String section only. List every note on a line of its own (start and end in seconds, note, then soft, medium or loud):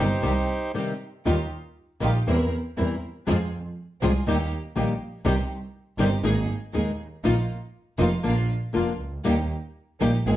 0.00 0.19 C4 medium
0.00 0.19 D#4 medium
0.00 0.19 G4 medium
0.22 0.44 C4 medium
0.22 0.44 D#4 medium
0.22 0.44 G4 medium
0.75 0.97 C4 soft
0.75 0.97 D#4 soft
0.75 0.97 G4 soft
1.26 1.48 D#4 medium
1.26 1.48 F4 medium
1.26 1.48 G4 medium
2.02 2.23 D#4 medium
2.02 2.23 F4 medium
2.02 2.23 G4 medium
2.27 2.48 C4 medium
2.27 2.48 E4 medium
2.27 2.48 A#4 medium
2.77 2.98 C4 soft
2.77 2.99 E4 soft
2.77 2.99 A#4 medium
3.27 3.48 C4 medium
3.27 3.48 F4 medium
3.27 3.48 G#4 medium
4.01 4.22 C4 medium
4.01 4.22 F4 medium
4.01 4.22 G#4 medium
4.26 4.47 A#3 medium
4.26 4.47 D#4 medium
4.26 4.47 G4 medium
4.76 4.96 A#3 soft
4.76 4.97 D#4 soft
4.76 4.97 G4 medium
5.25 5.46 C4 medium
5.25 5.46 D#4 medium
5.25 5.46 G4 medium
5.99 6.20 C4 medium
5.99 6.20 D#4 medium
5.99 6.20 G4 medium
6.24 6.45 A#3 medium
6.24 6.45 D#4 medium
6.24 6.45 G#4 medium
6.74 6.95 A#3 medium
6.74 6.95 D#4 soft
6.74 6.95 G#4 medium
7.24 7.45 A#3 medium
7.24 7.45 D#4 medium
7.24 7.45 F4 medium
7.99 8.20 A#3 medium
7.99 8.20 D#4 medium
7.99 8.20 F4 medium
8.24 8.45 A#3 medium
8.24 8.45 D4 medium
8.24 8.45 F4 medium
8.74 8.96 A#3 soft
8.74 8.96 D4 soft
8.74 8.96 F4 medium
9.25 9.46 A#3 medium
9.25 9.46 D#4 medium
9.25 9.46 G4 medium
10.00 10.22 A#3 medium
10.00 10.22 D#4 medium
10.00 10.22 G4 medium
10.25 10.37 A#3 medium
10.25 10.37 C4 medium
10.25 10.37 G#4 medium